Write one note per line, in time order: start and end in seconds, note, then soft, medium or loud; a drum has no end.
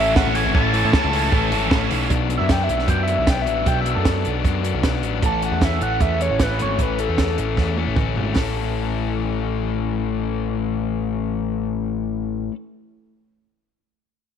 0.00 0.25 A1 medium
0.00 0.15 A2 loud
0.00 0.14 E3 medium
0.00 0.16 A3 medium
0.00 0.16 C#4 loud
0.00 0.16 E4 loud
0.00 2.07 A4 medium
0.00 0.14 E5 loud
0.00 2.07 E5 medium
0.00 2.07 A5 medium
0.00 2.07 C#6 medium
0.15 0.34 A2 medium
0.15 0.33 E3 loud
0.15 0.34 A3 loud
0.15 0.34 C#4 loud
0.15 0.35 E4 loud
0.15 0.36 F#5 loud
0.15 kick loud
0.15 snare loud
0.26 0.45 A1 loud
0.34 0.53 A2 medium
0.34 0.52 E3 medium
0.34 0.53 A3 medium
0.34 0.53 C#4 loud
0.34 0.55 E4 loud
0.34 0.54 G#5 loud
0.34 open hi-hat loud
0.46 0.54 G#1 loud
0.54 0.83 A1 loud
0.54 0.73 A2 loud
0.54 0.72 E3 loud
0.54 0.73 A3 loud
0.54 0.73 C#4 loud
0.54 0.75 E4 loud
0.54 1.87 A5 loud
0.54 kick loud
0.73 0.93 A2 medium
0.73 0.91 E3 medium
0.73 0.91 A3 loud
0.73 0.92 C#4 loud
0.73 0.95 E4 medium
0.73 open hi-hat medium
0.84 0.94 A2 loud
0.92 1.12 A2 medium
0.92 1.11 E3 loud
0.92 1.11 A3 loud
0.92 1.12 C#4 loud
0.92 1.13 E4 loud
0.92 kick loud
0.92 snare loud
1.04 1.32 C#2 loud
1.12 1.31 A2 loud
1.12 1.30 E3 medium
1.12 1.31 A3 loud
1.12 1.31 C#4 medium
1.12 1.32 E4 loud
1.12 open hi-hat medium
1.31 1.51 A1 loud
1.31 1.50 A2 medium
1.31 1.49 E3 loud
1.31 1.50 A3 loud
1.31 1.51 C#4 loud
1.31 1.52 E4 loud
1.31 kick loud
1.51 1.70 G#1 medium
1.51 1.69 A2 medium
1.51 1.69 E3 medium
1.51 1.69 A3 medium
1.51 1.70 C#4 loud
1.51 1.71 E4 medium
1.51 open hi-hat medium
1.70 1.89 A1 medium
1.70 1.89 A2 loud
1.70 1.88 E3 medium
1.70 1.89 A3 loud
1.70 1.89 C#4 loud
1.70 1.91 E4 loud
1.70 kick loud
1.70 snare loud
1.89 2.09 B1 medium
1.89 2.09 A2 medium
1.89 2.08 E3 medium
1.89 2.09 A3 medium
1.89 2.09 C#4 loud
1.89 2.10 E4 loud
1.89 open hi-hat medium
2.09 2.38 B1 medium
2.09 2.28 F#3 medium
2.09 2.29 B3 medium
2.09 2.29 D4 loud
2.09 kick loud
2.09 closed hi-hat medium
2.28 2.48 F#3 medium
2.28 2.49 B3 medium
2.28 2.49 D4 medium
2.28 closed hi-hat medium
2.38 2.68 F#2 medium
2.38 2.49 E5 medium
2.48 2.67 F#3 medium
2.48 2.68 B3 medium
2.48 2.68 D4 medium
2.48 2.63 G5 medium
2.48 kick loud
2.48 snare loud
2.48 closed hi-hat medium
2.64 2.86 F#3 medium
2.64 2.75 E5 medium
2.68 2.87 B1 medium
2.68 2.86 B3 medium
2.68 2.87 D4 medium
2.68 closed hi-hat medium
2.77 2.88 E5 medium
2.77 snare soft
2.87 3.16 F#2 medium
2.87 3.06 F#3 medium
2.87 3.06 B3 medium
2.87 3.07 D4 loud
2.87 3.01 G5 medium
2.87 kick loud
2.87 closed hi-hat medium
3.03 3.25 F#3 medium
3.03 3.15 E5 medium
3.07 3.26 B3 medium
3.07 3.26 D4 medium
3.07 closed hi-hat medium
3.16 3.48 B1 medium
3.16 3.28 E5 medium
3.26 3.44 F#3 medium
3.26 3.45 B3 medium
3.26 3.45 D4 medium
3.26 3.41 G5 medium
3.26 kick loud
3.26 snare loud
3.26 closed hi-hat medium
3.42 3.64 F#3 medium
3.42 3.54 E5 medium
3.46 3.66 A1 medium
3.46 3.65 B3 medium
3.46 3.65 D4 medium
3.46 closed hi-hat medium
3.56 3.67 E5 medium
3.66 3.94 B1 medium
3.66 3.84 F#3 loud
3.66 3.85 B3 medium
3.66 3.85 D4 medium
3.66 3.79 G5 medium
3.66 kick loud
3.66 closed hi-hat medium
3.81 3.93 E5 medium
3.85 4.03 F#3 medium
3.85 4.04 B3 medium
3.85 4.04 D4 medium
3.85 closed hi-hat medium
3.95 4.24 F#2 medium
3.95 4.32 A4 loud
4.04 4.24 F#3 medium
4.04 4.24 B3 medium
4.04 4.25 D4 medium
4.04 kick loud
4.04 snare loud
4.04 closed hi-hat medium
4.25 4.44 B1 medium
4.25 4.43 F#3 medium
4.25 4.43 B3 medium
4.25 4.44 D4 medium
4.25 closed hi-hat medium
4.44 4.72 F#2 medium
4.44 4.62 F#3 medium
4.44 4.63 B3 medium
4.44 4.63 D4 loud
4.44 kick medium
4.44 closed hi-hat medium
4.63 4.82 F#3 medium
4.63 4.83 B3 medium
4.63 4.84 D4 medium
4.63 closed hi-hat medium
4.74 5.03 B1 medium
4.83 5.02 F#3 medium
4.83 5.03 B3 medium
4.83 5.03 D4 medium
4.83 kick loud
4.83 snare loud
4.83 closed hi-hat medium
5.03 5.21 A1 medium
5.03 5.22 F#3 medium
5.03 5.22 B3 medium
5.03 5.22 D4 medium
5.03 closed hi-hat medium
5.22 5.50 A1 medium
5.22 5.42 E3 medium
5.22 5.42 A3 loud
5.22 5.43 C#4 medium
5.22 5.43 A5 medium
5.22 kick loud
5.22 closed hi-hat medium
5.42 5.61 E3 medium
5.42 5.62 A3 medium
5.42 5.62 C#4 medium
5.42 5.62 F#5 medium
5.42 closed hi-hat medium
5.52 5.80 E2 medium
5.61 5.80 E3 medium
5.61 5.80 A3 medium
5.61 5.81 C#4 medium
5.61 5.82 E5 medium
5.61 kick loud
5.61 snare loud
5.61 closed hi-hat medium
5.80 6.00 A1 medium
5.80 6.00 E3 medium
5.80 6.01 A3 medium
5.80 6.01 C#4 medium
5.80 6.01 F#5 medium
5.80 closed hi-hat medium
6.00 6.29 E2 medium
6.00 6.19 E3 medium
6.00 6.20 A3 loud
6.00 6.20 C#4 medium
6.00 6.20 E5 loud
6.00 kick loud
6.00 closed hi-hat medium
6.19 6.40 E3 medium
6.19 6.40 A3 medium
6.19 6.41 C#4 medium
6.19 6.40 C#5 medium
6.19 closed hi-hat medium
6.30 6.61 A1 medium
6.40 6.58 E3 medium
6.40 6.59 A3 medium
6.40 6.59 C#4 medium
6.40 6.60 B4 medium
6.40 kick loud
6.40 snare loud
6.40 closed hi-hat medium
6.59 6.78 G#1 medium
6.59 6.78 E3 medium
6.59 6.78 A3 medium
6.59 6.79 C#4 medium
6.59 6.80 C#5 medium
6.59 closed hi-hat medium
6.79 7.07 A1 medium
6.79 6.97 E3 medium
6.79 6.97 A3 medium
6.79 6.98 C#4 medium
6.79 6.99 B4 medium
6.79 kick medium
6.79 closed hi-hat medium
6.98 7.17 E3 medium
6.98 7.18 A3 medium
6.98 7.18 C#4 medium
6.98 7.37 A4 loud
6.98 closed hi-hat medium
7.09 7.36 E2 medium
7.18 7.37 E3 medium
7.18 7.37 A3 medium
7.18 7.38 C#4 medium
7.18 kick medium
7.18 snare loud
7.18 closed hi-hat medium
7.38 7.57 A1 medium
7.38 7.56 E3 medium
7.38 7.57 A3 medium
7.38 7.57 C#4 medium
7.38 closed hi-hat medium
7.57 7.85 E2 medium
7.57 7.76 E3 medium
7.57 7.77 A3 medium
7.57 7.77 C#4 medium
7.57 kick medium
7.57 snare soft
7.77 7.95 E3 medium
7.77 7.96 A3 medium
7.77 7.96 C#4 medium
7.77 high tom soft
7.87 8.18 A1 medium
7.96 8.16 E3 medium
7.96 8.16 A3 medium
7.96 8.16 C#4 medium
7.96 kick loud
7.96 mid tom medium
8.16 8.35 G#1 medium
8.16 8.33 E3 medium
8.16 8.35 A3 medium
8.16 8.35 C#4 medium
8.16 floor tom medium
8.35 12.48 A1 medium
8.35 12.51 E3 medium
8.35 12.53 A3 medium
8.35 12.54 C#4 medium
8.35 kick medium
8.35 snare medium
8.35 open hi-hat medium
8.39 12.55 A4 medium